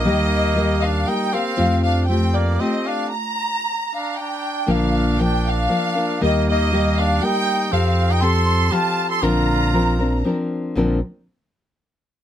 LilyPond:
<<
  \new Staff \with { instrumentName = "Violin section" } { \time 3/4 \key bes \major \tempo 4 = 118 ees''4. f''8 g''8 f''8~ | f''8 f''8 g''8 d''8 ees''8 f''8 | bes''4. f''8 g''4 | f''4 g''8 f''4. |
ees''8 ees''4 f''8 g''4 | f''8. g''16 c'''4 a''8. c'''16 | bes''2 r4 | r2. | }
  \new Staff \with { instrumentName = "Trumpet" } { \time 3/4 \key bes \major bes4. d'8 ees'8 c'8~ | c'8 d'8 c'8 bes8 c'8 d'8 | r4. d'8 d'4 | d'4 d'8 d'4. |
bes8 bes4 d'8 ees'4 | c'8. ees'16 a'4 f'8. a'16 | f'2 r4 | r2. | }
  \new Staff \with { instrumentName = "Nylon-string guitar" } { \time 3/4 \key bes \major <ees g bes g' bes'>4 <g bes g' bes'>4 <g bes g' bes'>8 <bes g' bes'>8 | <f a c' f' g'>4 <a c' f' g'>4 <a c' f' g'>4 | r2. | <bes, d f bes d' bes'>4 <f bes d' bes'>4 <f bes d' bes'>8 <f bes d' bes'>8 |
<ees g bes g' bes'>4 <g bes g' bes'>4 <g bes g' bes'>4 | <f c' g' a'>4 <f c' g' a'>4 <f c' g' a'>4 | <bes, d f c' d' bes'>4 <f c' d' bes'>8 <f c' d' bes'>8 <f c' d' bes'>4 | <bes, d f c' d' bes'>8 r2 r8 | }
  \new Staff \with { instrumentName = "Sub bass" } { \clef bass \time 3/4 \key bes \major ees,2. | f,2. | r2. | bes,,2. |
ees,2. | f,2. | bes,,2. | bes,,8 r2 r8 | }
>>